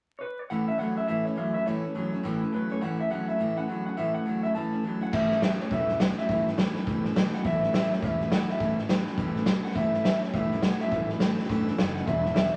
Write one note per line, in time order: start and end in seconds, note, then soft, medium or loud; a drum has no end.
0.19 0.38 B4 medium
0.19 0.21 C#5 medium
0.39 0.50 C#5 medium
0.50 0.68 A2 medium
0.50 0.68 E3 medium
0.50 0.69 A3 medium
0.50 0.68 C#4 medium
0.50 0.66 E4 medium
0.50 0.68 F#5 loud
0.68 0.79 A3 soft
0.68 0.80 C#4 soft
0.68 0.79 E4 soft
0.68 0.79 E5 medium
0.78 1.06 A2 medium
0.78 0.96 E3 medium
0.78 1.06 F#3 medium
0.78 0.97 A3 medium
0.78 0.97 C#4 medium
0.78 0.95 E4 medium
0.78 0.97 F#5 loud
0.96 1.08 A3 soft
0.96 1.09 C#4 soft
0.96 1.08 E4 soft
0.96 1.06 E5 medium
1.08 1.26 A2 medium
1.08 1.26 E3 medium
1.08 1.26 A3 medium
1.08 1.26 C#4 medium
1.08 1.24 E4 medium
1.08 1.25 E5 medium
1.25 1.36 A3 soft
1.25 1.37 C#4 soft
1.25 1.37 E4 medium
1.25 1.37 C#5 medium
1.36 1.63 A2 medium
1.36 1.54 E3 medium
1.36 1.64 F#3 loud
1.36 1.55 A3 medium
1.36 1.55 C#4 medium
1.36 1.54 E4 medium
1.36 1.53 E5 medium
1.54 1.66 A3 soft
1.54 1.67 C#4 soft
1.54 1.66 E4 soft
1.54 1.66 E5 loud
1.66 1.84 A2 medium
1.66 1.84 E3 medium
1.66 1.85 A3 medium
1.66 1.84 C#4 medium
1.66 1.83 E4 medium
1.66 2.24 C#5 medium
1.84 1.94 A3 soft
1.84 1.96 C#4 soft
1.84 1.95 E4 soft
1.95 2.22 A2 medium
1.95 2.13 E3 medium
1.95 2.22 F#3 loud
1.95 2.13 A3 medium
1.95 2.13 C#4 medium
1.95 2.11 E4 medium
2.13 2.24 A3 soft
2.13 2.24 C#4 medium
2.13 2.24 E4 medium
2.23 2.41 A2 medium
2.23 2.42 E3 medium
2.23 2.42 A3 medium
2.23 2.41 C#4 medium
2.23 2.40 E4 loud
2.41 2.53 A3 soft
2.41 2.53 C#4 medium
2.41 2.52 E4 medium
2.52 2.79 A2 medium
2.52 2.71 E3 medium
2.52 2.79 F#3 medium
2.52 2.71 A3 medium
2.52 2.70 C#4 medium
2.52 2.72 B4 medium
2.56 2.68 E4 medium
2.70 2.82 A3 soft
2.70 2.82 C#4 medium
2.70 2.81 E4 medium
2.70 2.82 C#5 medium
2.81 2.99 A2 medium
2.81 3.00 E3 medium
2.81 3.00 A3 medium
2.81 2.99 C#4 medium
2.81 2.98 E4 medium
2.81 2.98 F#5 medium
2.99 3.10 A3 soft
2.99 3.11 C#4 soft
2.99 3.10 E4 soft
2.99 3.11 E5 medium
3.10 3.37 A2 medium
3.10 3.28 E3 medium
3.10 3.37 F#3 loud
3.10 3.29 A3 medium
3.10 3.29 C#4 medium
3.10 3.27 E4 medium
3.10 3.28 F#5 loud
3.28 3.39 A3 soft
3.28 3.40 C#4 soft
3.28 3.39 E4 medium
3.28 3.57 E5 loud
3.39 3.57 A2 medium
3.39 3.58 E3 medium
3.39 3.58 A3 medium
3.39 3.57 C#4 medium
3.39 3.55 E4 medium
3.56 3.68 A3 soft
3.56 3.69 C#4 soft
3.56 3.68 E4 medium
3.56 3.85 F#5 loud
3.68 3.95 A2 medium
3.68 3.86 E3 medium
3.68 3.95 F#3 medium
3.68 3.87 A3 medium
3.68 3.86 C#4 medium
3.68 3.84 E4 medium
3.85 3.97 A3 soft
3.85 3.98 C#4 medium
3.85 3.97 E4 medium
3.85 3.97 F#5 medium
3.97 4.15 A2 medium
3.97 4.15 E3 medium
3.97 4.16 A3 medium
3.97 4.15 C#4 medium
3.97 4.13 E4 medium
3.97 4.14 E5 loud
4.14 4.26 A3 soft
4.14 4.27 C#4 soft
4.14 4.26 E4 soft
4.14 4.43 F#5 loud
4.25 4.53 A2 medium
4.25 4.44 E3 medium
4.25 4.53 F#3 medium
4.25 4.44 A3 medium
4.25 4.44 C#4 medium
4.25 4.43 E4 medium
4.43 4.55 A3 soft
4.43 4.56 C#4 medium
4.43 4.55 E4 medium
4.43 4.54 E5 loud
4.55 4.73 A2 medium
4.55 4.73 E3 medium
4.55 4.73 A3 medium
4.55 4.73 C#4 medium
4.55 4.71 E4 medium
4.55 4.98 A5 medium
4.73 4.83 A3 soft
4.73 4.85 C#4 medium
4.73 4.84 E4 medium
4.83 5.11 A2 medium
4.83 5.01 E3 medium
4.83 5.11 F#3 loud
4.83 5.02 A3 medium
4.83 5.01 C#4 medium
4.83 5.00 E4 medium
5.01 5.12 A3 soft
5.01 5.12 C#4 medium
5.01 5.13 E4 medium
5.01 5.08 F#5 loud
5.12 5.54 A1 medium
5.12 5.30 A2 medium
5.12 5.31 E3 medium
5.12 5.31 A3 medium
5.12 5.31 C#4 medium
5.12 5.29 E4 medium
5.12 5.40 E5 loud
5.12 kick loud
5.12 snare soft
5.12 crash medium
5.30 5.41 A3 soft
5.30 5.42 C#4 soft
5.30 5.42 E4 medium
5.30 snare soft
5.41 5.69 A2 medium
5.41 5.60 E3 medium
5.41 5.69 F#3 loud
5.41 5.60 A3 medium
5.41 5.61 C#4 medium
5.41 5.60 E4 medium
5.41 5.48 E5 loud
5.41 snare loud
5.41 hi-hat pedal medium
5.60 5.72 C#4 soft
5.60 5.71 E4 soft
5.60 5.72 C#5 medium
5.60 snare soft
5.64 5.72 A3 soft
5.70 6.11 E1 medium
5.70 5.89 A2 medium
5.70 5.90 E3 medium
5.70 5.90 A3 medium
5.70 5.89 C#4 medium
5.70 5.87 E4 medium
5.70 5.99 E5 medium
5.70 kick loud
5.70 snare soft
5.88 5.99 A3 soft
5.88 6.00 C#4 medium
5.88 6.00 E4 medium
5.88 snare soft
6.00 6.27 A2 medium
6.00 6.18 E3 medium
6.00 6.27 F#3 medium
6.00 6.18 A3 medium
6.00 6.18 C#4 medium
6.00 6.16 E4 medium
6.00 6.06 F#5 medium
6.00 snare loud
6.00 hi-hat pedal loud
6.18 6.29 A3 soft
6.18 6.29 C#4 medium
6.18 6.29 E4 medium
6.18 6.47 E5 medium
6.18 snare soft
6.29 6.69 A1 medium
6.29 6.47 A2 medium
6.29 6.47 E3 medium
6.29 6.47 A3 medium
6.29 6.47 C#4 medium
6.29 6.45 E4 medium
6.29 kick loud
6.29 snare soft
6.46 6.58 A3 soft
6.46 6.58 C#4 soft
6.46 6.58 E4 medium
6.46 snare soft
6.58 6.85 A2 medium
6.58 6.76 E3 medium
6.58 6.85 F#3 medium
6.58 6.76 A3 medium
6.58 6.76 C#4 medium
6.58 6.73 E4 medium
6.58 snare loud
6.58 hi-hat pedal medium
6.74 6.87 A3 soft
6.74 6.87 C#4 medium
6.74 6.86 E4 medium
6.74 snare soft
6.87 7.28 E1 medium
6.87 7.05 A2 medium
6.87 7.05 E3 medium
6.87 7.05 A3 medium
6.87 7.05 C#4 medium
6.87 7.03 E4 medium
6.87 kick loud
6.87 snare soft
7.05 7.15 A3 medium
7.05 7.17 C#4 medium
7.05 7.16 E4 medium
7.05 snare soft
7.15 7.42 A2 medium
7.15 7.33 E3 medium
7.15 7.43 F#3 medium
7.15 7.34 A3 medium
7.15 7.33 C#4 medium
7.15 7.31 E4 medium
7.15 snare loud
7.15 hi-hat pedal medium
7.32 7.45 A3 soft
7.32 7.45 C#4 medium
7.32 7.44 E4 medium
7.32 7.45 F#5 loud
7.32 snare soft
7.44 7.85 A1 loud
7.44 7.62 A2 medium
7.44 7.63 E3 medium
7.44 7.63 A3 medium
7.44 7.63 C#4 medium
7.44 7.61 E4 medium
7.44 7.73 E5 loud
7.44 kick loud
7.44 snare soft
7.62 7.74 C#4 medium
7.62 7.73 E4 medium
7.62 snare soft
7.66 7.74 A3 soft
7.73 8.00 A2 medium
7.73 7.91 E3 medium
7.73 8.00 F#3 loud
7.73 7.92 A3 medium
7.73 7.91 C#4 medium
7.73 7.88 E4 medium
7.73 7.93 E5 loud
7.73 snare loud
7.73 hi-hat pedal medium
7.90 8.01 A3 soft
7.90 8.02 C#4 soft
7.90 8.02 E4 soft
7.90 8.04 C#5 medium
7.90 snare soft
8.01 8.43 E1 medium
8.01 8.20 A2 medium
8.01 8.20 E3 medium
8.01 8.20 A3 medium
8.01 8.19 C#4 medium
8.01 8.18 E4 medium
8.01 8.31 E5 medium
8.01 kick loud
8.01 snare soft
8.19 8.31 A3 soft
8.19 8.31 C#4 medium
8.19 8.31 E4 medium
8.19 snare soft
8.31 8.58 A2 medium
8.31 8.49 E3 medium
8.31 8.58 F#3 loud
8.31 8.49 A3 medium
8.31 8.48 C#4 medium
8.31 8.46 E4 medium
8.31 8.50 F#5 medium
8.31 snare loud
8.31 hi-hat pedal medium
8.47 8.59 A3 soft
8.47 8.60 C#4 soft
8.47 8.59 E4 medium
8.47 8.79 E5 medium
8.47 snare soft
8.59 9.01 A1 medium
8.59 8.77 A2 medium
8.59 8.78 E3 medium
8.59 8.78 A3 medium
8.59 8.77 C#4 medium
8.59 8.75 E4 medium
8.59 kick loud
8.59 snare soft
8.76 8.88 A3 soft
8.76 8.89 C#4 soft
8.76 8.88 E4 medium
8.76 snare soft
8.88 9.16 A2 medium
8.88 9.07 E3 medium
8.88 9.16 F#3 loud
8.88 9.07 A3 medium
8.88 9.07 C#4 medium
8.88 9.05 E4 medium
8.88 snare loud
8.88 hi-hat pedal medium
9.06 9.18 A3 soft
9.06 9.19 C#4 medium
9.06 9.18 E4 medium
9.06 snare soft
9.18 9.58 E1 medium
9.18 9.36 A2 medium
9.18 9.36 E3 medium
9.18 9.37 A3 medium
9.18 9.35 C#4 medium
9.18 9.33 E4 medium
9.18 kick loud
9.18 snare soft
9.35 9.46 A3 medium
9.35 9.47 C#4 medium
9.35 9.47 E4 medium
9.35 snare soft
9.46 9.73 A2 medium
9.46 9.64 E3 medium
9.46 9.74 F#3 medium
9.46 9.65 A3 medium
9.46 9.65 C#4 medium
9.46 9.63 E4 medium
9.46 snare loud
9.46 hi-hat pedal medium
9.64 9.76 A3 soft
9.64 9.76 C#4 medium
9.64 9.76 E4 medium
9.64 9.75 F#5 loud
9.64 snare soft
9.71 snare soft
9.75 10.16 A1 medium
9.75 9.94 A2 medium
9.75 9.94 E3 medium
9.75 9.94 A3 medium
9.75 9.94 C#4 medium
9.75 9.92 E4 loud
9.75 10.03 E5 loud
9.75 kick loud
9.75 snare soft
9.93 10.05 A3 soft
9.93 10.06 C#4 soft
9.93 10.05 E4 soft
9.93 snare soft
10.04 10.31 A2 medium
10.04 10.23 E3 medium
10.04 10.32 F#3 loud
10.04 10.23 A3 medium
10.04 10.23 C#4 medium
10.04 10.21 E4 medium
10.04 10.21 E5 loud
10.04 snare loud
10.04 hi-hat pedal medium
10.22 10.33 A3 soft
10.22 10.34 C#4 soft
10.22 10.34 E4 medium
10.22 10.34 C#5 medium
10.22 snare soft
10.33 10.74 E1 medium
10.33 10.51 A2 medium
10.33 10.52 E3 medium
10.33 10.52 A3 medium
10.33 10.52 C#4 medium
10.33 10.51 E4 medium
10.33 10.62 E5 medium
10.33 kick loud
10.33 snare soft
10.51 10.64 C#4 medium
10.51 10.63 E4 medium
10.51 snare soft
10.56 10.64 A3 soft
10.62 10.90 A2 medium
10.62 10.81 E3 medium
10.62 10.90 F#3 medium
10.62 10.82 A3 medium
10.62 10.82 C#4 medium
10.62 10.79 F#5 medium
10.62 snare loud
10.62 hi-hat pedal medium
10.67 10.80 E4 medium
10.80 10.93 C#4 medium
10.80 10.92 E4 medium
10.80 11.08 E5 medium
10.80 snare soft
10.85 10.92 A3 soft
10.91 11.32 A1 medium
10.91 11.10 A2 medium
10.91 11.10 E3 medium
10.91 11.10 A3 medium
10.91 11.11 C#4 medium
10.91 11.10 E4 medium
10.91 kick loud
10.91 snare soft
11.09 11.22 C#4 soft
11.09 11.21 E4 soft
11.09 snare soft
11.14 11.21 A3 soft
11.20 11.48 A2 medium
11.20 11.39 E3 medium
11.20 11.48 F#3 loud
11.20 11.40 A3 medium
11.20 11.39 C#4 medium
11.20 snare loud
11.20 hi-hat pedal medium
11.25 11.37 E4 medium
11.38 11.49 A3 medium
11.38 11.49 C#4 medium
11.38 11.50 E4 medium
11.38 snare soft
11.44 snare soft
11.49 11.74 G1 medium
11.49 11.67 A2 medium
11.49 11.67 E3 medium
11.49 11.68 A3 medium
11.49 11.68 C#4 medium
11.49 11.66 E4 loud
11.49 kick loud
11.49 snare soft
11.67 11.78 A3 soft
11.67 11.79 C#4 medium
11.67 11.79 E4 medium
11.67 snare soft
11.78 12.04 F#1 medium
11.78 12.05 A2 medium
11.78 11.96 E3 medium
11.78 12.06 F#3 medium
11.78 11.97 A3 medium
11.78 11.97 C#4 medium
11.78 11.96 E4 medium
11.78 snare loud
11.78 hi-hat pedal medium
11.95 12.08 C#4 medium
11.95 12.08 E4 medium
11.95 12.06 F#5 loud
11.95 snare soft
12.00 12.07 A3 soft
12.06 12.48 E1 medium
12.06 12.25 E2 medium
12.06 12.25 B2 medium
12.06 12.26 E3 medium
12.06 12.26 G#3 medium
12.06 12.25 D4 medium
12.06 12.24 E4 medium
12.06 12.33 E5 loud
12.06 kick loud
12.06 snare soft
12.25 12.35 E3 soft
12.25 12.36 G#3 soft
12.25 12.37 D4 medium
12.25 12.36 E4 medium
12.25 snare soft
12.35 12.56 E2 medium
12.35 12.56 C#3 loud
12.35 12.54 E3 medium
12.35 12.55 G#3 medium
12.35 12.54 D4 medium
12.35 12.52 E5 loud
12.35 snare loud
12.35 hi-hat pedal medium
12.40 12.53 E4 medium
12.52 12.56 D5 loud